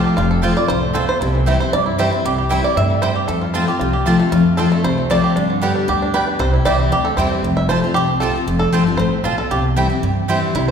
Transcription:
Already playing: steel-string acoustic guitar C3 F3 A3 C4 F4, five-string banjo F4
0.05 five-string banjo G4
0.17 upright bass F1, steel-string acoustic guitar F2, five-string banjo F4
0.31 five-string banjo A4
0.42 steel-string acoustic guitar F3 A3 C4 F4, mandolin C4 F4 C5 A5, five-string banjo F4
0.56 steel-string acoustic guitar C4 F4, five-string banjo D5
0.68 upright bass C2, steel-string acoustic guitar A2, five-string banjo C5
0.83 five-string banjo A3
0.93 steel-string acoustic guitar B2, mandolin C4 F4 C5 A5, five-string banjo A4
1.09 five-string banjo C5
1.21 upright bass C2, steel-string acoustic guitar C3, five-string banjo E4
1.35 five-string banjo E3
1.46 steel-string acoustic guitar E3 G3 C4 E4, mandolin C4 E4 C5 G5, five-string banjo C4
1.60 steel-string acoustic guitar C4 E4, five-string banjo C5
1.73 upright bass G2, steel-string acoustic guitar G2, five-string banjo D5
1.86 five-string banjo E4
1.98 steel-string acoustic guitar E3 G3 C4 E4, mandolin C4 E4 C5 G5, five-string banjo C5
2.12 steel-string acoustic guitar C4 E4, five-string banjo E4
2.25 upright bass C2, steel-string acoustic guitar C3, five-string banjo G4
2.38 five-string banjo G4
2.49 steel-string acoustic guitar E3 G3 C4 E4, mandolin C4 E4 C5 G5, five-string banjo E4
2.64 steel-string acoustic guitar C4 E4, five-string banjo D5
2.76 upright bass G2, steel-string acoustic guitar A2, five-string banjo E5
2.90 five-string banjo G3
3.02 steel-string acoustic guitar G2, mandolin C4 E4 C5 G5, five-string banjo C5
3.16 five-string banjo G4
3.28 upright bass F2, steel-string acoustic guitar F2, five-string banjo A4
3.41 five-string banjo F4
3.54 steel-string acoustic guitar F3 A3 C4 F4, mandolin C4 F4 C5 A5, five-string banjo C4
3.68 steel-string acoustic guitar C4 F4, five-string banjo G4
3.79 upright bass C2, steel-string acoustic guitar C3, five-string banjo F4
3.93 five-string banjo G4
4.06 steel-string acoustic guitar F3 A3 C4 F4, mandolin C4 F4 C5 A5, five-string banjo F4
4.19 five-string banjo A3, steel-string acoustic guitar C4 F4
4.32 upright bass F2, steel-string acoustic guitar F2, five-string banjo F4
4.57 steel-string acoustic guitar F3 A3 C4 F4, mandolin C4 F4 C5 A5, five-string banjo A4
4.72 five-string banjo A3, steel-string acoustic guitar C4 F4
4.84 upright bass C2, steel-string acoustic guitar C3, five-string banjo C5
4.98 five-string banjo A3
5.10 steel-string acoustic guitar F3 A3 C4 F4, mandolin C4 F4 C5 A5, five-string banjo D5
5.24 five-string banjo G4
5.36 upright bass G2, steel-string acoustic guitar G2, five-string banjo D4
5.50 five-string banjo D3
5.62 steel-string acoustic guitar D3 G3 B3 G4, mandolin B3 G4 D5 G5, five-string banjo B3
5.75 five-string banjo D4
5.88 upright bass D2, steel-string acoustic guitar A2, five-string banjo G4
6.02 five-string banjo D4
6.14 steel-string acoustic guitar B2, mandolin B3 G4 D5 G5, five-string banjo B4
6.27 five-string banjo D4
6.39 upright bass C2, steel-string acoustic guitar C3, five-string banjo C5
6.54 five-string banjo E4
6.65 upright bass C2, steel-string acoustic guitar E3 G3 C4 E4, mandolin C4 E4 C5 G5, five-string banjo D5
6.79 five-string banjo C4
6.91 upright bass D2, steel-string acoustic guitar G2, five-string banjo G4
7.05 five-string banjo A4
7.17 upright bass E2, steel-string acoustic guitar E3 G3 C4 E4, mandolin C4 E4 C5 G5, five-string banjo C5
7.31 five-string banjo G3
7.43 upright bass F1, steel-string acoustic guitar F2
7.57 five-string banjo E5
7.69 steel-string acoustic guitar F3 A3 C4 F4, mandolin C4 F4 C5 A5, five-string banjo C5
7.84 steel-string acoustic guitar C4 F4
7.94 upright bass C2, steel-string acoustic guitar C3, five-string banjo G4
8.20 steel-string acoustic guitar F3 A3 C4 F4, mandolin C4 F4 C5 A5, five-string banjo A4
8.35 steel-string acoustic guitar C4 F4
8.47 upright bass F1, steel-string acoustic guitar F2
8.59 five-string banjo A4
8.72 upright bass G1, steel-string acoustic guitar F3 A3 C4 F4, mandolin C4 F4 C5 A5
8.87 steel-string acoustic guitar C4 F4
8.97 upright bass A1, steel-string acoustic guitar A2, five-string banjo C5
9.24 upright bass B1, steel-string acoustic guitar B2, mandolin C4 F4 C5 A5, five-string banjo F4
9.38 five-string banjo A4
9.51 upright bass C2, steel-string acoustic guitar C3, five-string banjo G4
9.76 steel-string acoustic guitar E3 G3 C4 E4, mandolin C4 E4 C5 G5
9.90 steel-string acoustic guitar C4 E4
10.03 upright bass G2, steel-string acoustic guitar G2
10.28 steel-string acoustic guitar E3 G3 C4 E4, mandolin C4 E4 C5 G5
10.55 upright bass C2, steel-string acoustic guitar C3, five-string banjo E4

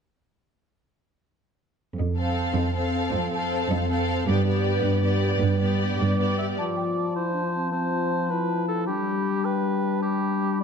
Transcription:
1.97 cello section F2, french horn section C4 A4
2.17 viola section C4, violin section A4 F5
2.55 cello section F2
2.74 viola section C4, violin section A4 F5
3.13 cello section F2
3.32 viola section C4, violin section A4 F5
3.70 cello section F2
3.89 viola section C4, violin section A4 F5
4.27 cello section G2, viola section B3, french horn section D4 B4, violin section G4 D5
4.46 viola section B3, violin section G4 D5
4.84 cello section G2
5.03 viola section B3, violin section G4 D5
5.41 cello section G2
5.60 viola section B3, violin section G4 D5
5.99 cello section G2, cor anglais D5
6.18 viola section B3, violin section G4 D5
6.38 cor anglais E5
6.58 french horn section F3, clarinet F4, cor anglais D5, flute A5
6.77 flute G5
6.97 flute A5
7.16 clarinet E4, cor anglais C5
7.34 clarinet D4
7.54 clarinet C4
7.72 clarinet C4, cor anglais C5
8.30 clarinet E4, cor anglais B4
8.68 cor anglais A4
8.86 french horn section G3, clarinet D4, cor anglais G4, flute B5
9.45 cor anglais B4, flute G5
10.02 cor anglais G4, flute B5
10.60 clarinet G4

